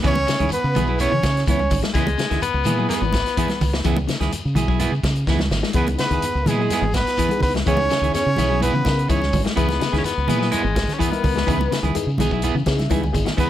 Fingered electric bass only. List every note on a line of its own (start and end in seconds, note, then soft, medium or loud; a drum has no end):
0.04 0.25 C#2 loud
0.40 0.50 C#2 medium
0.51 muted fingered electric bass stroke soft
0.64 0.74 C#3 medium
0.76 1.07 B1 loud
1.12 1.22 C#3 medium
1.23 1.43 C#3 medium
1.48 1.68 C#2 loud
1.71 1.81 G#1 loud
1.95 2.15 C#2 medium
2.31 2.41 C#2 loud
2.54 2.64 C#2 medium
2.65 2.86 A#2 medium
3.01 3.22 G#1 medium
3.62 3.82 C#2 medium
3.85 4.05 C#2 loud
4.21 4.31 C#2 medium
4.45 4.55 C#3 medium
4.55 4.87 B1 loud
4.92 5.02 C#3 medium
5.03 5.24 C#3 medium
5.27 5.48 C#2 loud
5.51 5.62 G#1 loud
5.74 5.95 C#2 loud
6.11 6.21 C#2 loud
6.23 muted fingered electric bass stroke soft
6.35 6.45 C#2 medium
6.47 6.67 A#2 medium
6.82 7.03 G#1 medium
7.42 7.63 C#2 medium
7.67 7.87 C#2 loud
8.01 8.12 C#2 medium
8.26 8.36 C#3 medium
8.38 8.69 B1 loud
8.73 8.83 C#3 medium
8.86 9.06 C#3 loud
9.10 9.30 C#2 loud
9.33 9.44 G#1 loud
9.57 9.77 C#2 medium
9.93 10.03 C#2 loud
10.17 10.27 C#2 medium
10.29 10.49 A#2 medium
10.64 10.85 G#1 medium
11.24 11.44 C#2 medium
11.47 11.68 C#2 loud
11.83 11.93 C#2 medium
12.07 12.17 C#3 medium
12.19 12.50 B1 medium
12.55 12.65 C#3 medium
12.66 12.87 C#3 medium
12.90 13.11 C#2 loud
13.14 13.25 G#1 loud
13.38 13.50 C#2 loud